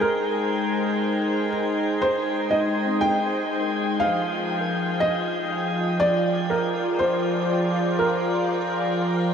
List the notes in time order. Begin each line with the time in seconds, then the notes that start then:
Already playing: G#3 D#4 G#4 C5 G5
0.01 A#4
2.02 C5
2.51 D#5
2.86 C4
3.01 G5
3.61 A#4
4.00 F3 F5
4.32 F4
4.60 A#4
5.00 D#5
6.00 D5
6.49 A#4 D5
6.95 A#5
6.99 C5
7.95 C6
7.99 A#4